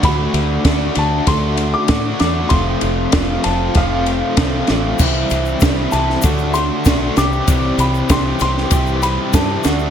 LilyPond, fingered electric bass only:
\new Staff \with { instrumentName = "Fingered electric bass" } { \clef bass \time 4/4 \key c \lydian \tempo 4 = 97 d,8 d,8 d,8 d,8 d,4 a,8 e,8 | f,,8 f,,8 f,,8 f,,8 f,,4 c,8 a,,8 | c,8 c,8 c,8 c,8 d,4 b,,8 c,8 | c,8 c,8 c,8 c,8 c,4 g,8 d,8 | }